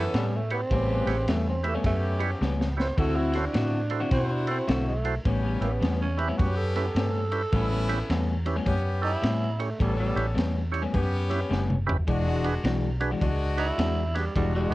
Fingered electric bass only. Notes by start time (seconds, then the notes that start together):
0.14 A2
0.71 A1
1.06 A1
1.27 E2
1.84 F#2
2.41 C#2
2.97 D2
3.55 A2
4.11 B2
4.69 B1
5.26 A1
5.61 A1
5.82 E2
6.39 F#2
6.95 G2
7.53 A1
8.10 E2
8.66 F#2
9.23 A2
9.80 A1
10.16 A1
10.36 E2
10.93 F#2
11.51 F#1
12.07 E1
12.64 B1
13.22 C#2
13.78 E2
14.35 E1
14.70 E1